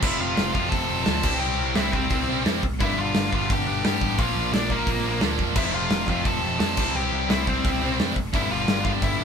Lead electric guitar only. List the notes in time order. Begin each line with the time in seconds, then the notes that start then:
0.04 E4 E5
0.20 F4 F5
0.52 F4 F5
0.69 A4 A5
1.04 A4 A5
1.40 G4 G5
1.75 E4 E5
1.92 C4 C5
2.80 E4 E5
2.98 F4 F5
3.34 F4 F5
3.52 G4 G5
3.85 G4 G5
4.19 F4 F5
4.53 D4 D5
4.71 A#3 A#4
5.57 E4 E5
5.74 F4 F5
6.10 F4 F5
6.26 A4 A5
6.60 A4 A5
6.96 G4 G5
7.30 E4 E5
7.48 C4 C5
8.35 E4 E5
8.51 F4 F5
8.85 F4 F5
9.03 E4 E5